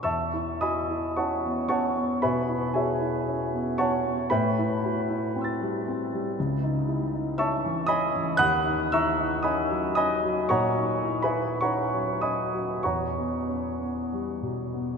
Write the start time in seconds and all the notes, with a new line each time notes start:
0.03 E2 E5 A5 C#6 E6
0.33 E4
0.61 F#4 D#5 G#5 B5 D#6
0.90 E4
1.17 C#4 C#5 F#5 A5 C#6
1.45 B3
1.69 C#4 C#5 F#5 A5 C#6
1.97 B3
2.22 B2 B4 E5 G#5 B5
2.49 E4
2.74 F#4 G#4 C#5 E5 G#5
3.01 E4
3.27 C#4
3.53 B3
3.78 C#4 C#5 F#5 A5 C#6
4.06 B3
4.30 A2 B4 E5 G5 B5
4.59 E4
4.85 F#4
5.09 E4
5.36 C4 G5 C6
5.41 E6 A6
5.61 G3
5.88 C4
6.13 G3
6.39 C#2
6.63 D#4
6.89 E4
7.13 D#4
7.38 C#4 E5 A5 C#6 E6
7.65 E3
7.87 C#4 D#5 G#5 B5 D#6
8.16 E3
8.37 D#2 F#5 B5 D#6 F#6
8.66 D#4
8.92 E4 E5 A#5 C#6 E6
9.19 D#4
9.43 C#4 D#5 G#5 B5 D#6
9.70 F#3
9.95 C#4 D#5 G#5 B5 D#6
10.23 F#3
10.49 A#2 C#5 F#5 A#5 C#6
10.78 D#4
11.05 E4
11.22 B4 E5 G#5 B5
11.34 D#4
11.61 C#4 C#5 F#5 A#5 C#6
11.93 F#3
12.21 C#4 D#5 G#5 B5 D#6
12.53 F#3
12.83 E2 C#5 F#5 A#5 C#6
13.18 B3
13.48 C#4
13.79 B3
14.13 G3
14.42 B2
14.74 B3